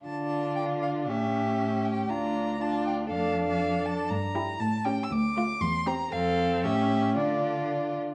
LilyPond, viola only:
\new Staff \with { instrumentName = "Viola" } { \time 2/4 \key d \minor \tempo 4 = 118 d'2 | cis'2 | d'4 d'4 | d'2 |
r8 e'8 r8 cis'8 | r8 a8 r8 c'8 | c'4 cis'4 | d'4. r8 | }